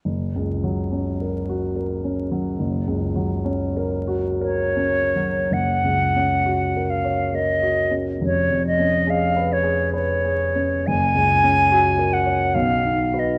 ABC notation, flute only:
X:1
M:3/4
L:1/16
Q:1/4=69
K:F#
V:1 name="Flute"
z12 | z8 c4 | f6 e2 d4 | c2 d2 e2 c2 c4 |
g6 f2 e3 d |]